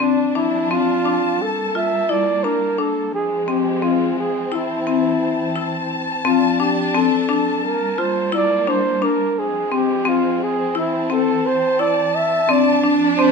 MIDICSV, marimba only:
0, 0, Header, 1, 2, 480
1, 0, Start_track
1, 0, Key_signature, -1, "major"
1, 0, Tempo, 693642
1, 8, Time_signature, 9, 3, 24, 8
1, 9216, End_track
2, 0, Start_track
2, 0, Title_t, "Marimba"
2, 0, Program_c, 0, 12
2, 1, Note_on_c, 0, 60, 76
2, 194, Note_off_c, 0, 60, 0
2, 245, Note_on_c, 0, 62, 61
2, 437, Note_off_c, 0, 62, 0
2, 491, Note_on_c, 0, 60, 66
2, 680, Note_off_c, 0, 60, 0
2, 730, Note_on_c, 0, 62, 59
2, 1111, Note_off_c, 0, 62, 0
2, 1212, Note_on_c, 0, 65, 64
2, 1401, Note_off_c, 0, 65, 0
2, 1448, Note_on_c, 0, 64, 67
2, 1639, Note_off_c, 0, 64, 0
2, 1691, Note_on_c, 0, 62, 59
2, 1881, Note_off_c, 0, 62, 0
2, 1927, Note_on_c, 0, 62, 61
2, 2309, Note_off_c, 0, 62, 0
2, 2407, Note_on_c, 0, 60, 64
2, 2599, Note_off_c, 0, 60, 0
2, 2645, Note_on_c, 0, 60, 66
2, 3028, Note_off_c, 0, 60, 0
2, 3126, Note_on_c, 0, 64, 67
2, 3318, Note_off_c, 0, 64, 0
2, 3369, Note_on_c, 0, 60, 68
2, 3751, Note_off_c, 0, 60, 0
2, 3845, Note_on_c, 0, 64, 64
2, 4228, Note_off_c, 0, 64, 0
2, 4325, Note_on_c, 0, 60, 81
2, 4517, Note_off_c, 0, 60, 0
2, 4566, Note_on_c, 0, 62, 62
2, 4758, Note_off_c, 0, 62, 0
2, 4807, Note_on_c, 0, 60, 71
2, 4999, Note_off_c, 0, 60, 0
2, 5044, Note_on_c, 0, 62, 69
2, 5428, Note_off_c, 0, 62, 0
2, 5524, Note_on_c, 0, 65, 65
2, 5717, Note_off_c, 0, 65, 0
2, 5760, Note_on_c, 0, 64, 72
2, 5954, Note_off_c, 0, 64, 0
2, 6002, Note_on_c, 0, 62, 68
2, 6196, Note_off_c, 0, 62, 0
2, 6240, Note_on_c, 0, 62, 71
2, 6625, Note_off_c, 0, 62, 0
2, 6723, Note_on_c, 0, 60, 62
2, 6916, Note_off_c, 0, 60, 0
2, 6955, Note_on_c, 0, 60, 68
2, 7342, Note_off_c, 0, 60, 0
2, 7439, Note_on_c, 0, 64, 75
2, 7634, Note_off_c, 0, 64, 0
2, 7680, Note_on_c, 0, 60, 68
2, 8065, Note_off_c, 0, 60, 0
2, 8160, Note_on_c, 0, 64, 60
2, 8545, Note_off_c, 0, 64, 0
2, 8641, Note_on_c, 0, 60, 76
2, 8835, Note_off_c, 0, 60, 0
2, 8882, Note_on_c, 0, 62, 66
2, 9075, Note_off_c, 0, 62, 0
2, 9125, Note_on_c, 0, 60, 66
2, 9216, Note_off_c, 0, 60, 0
2, 9216, End_track
0, 0, End_of_file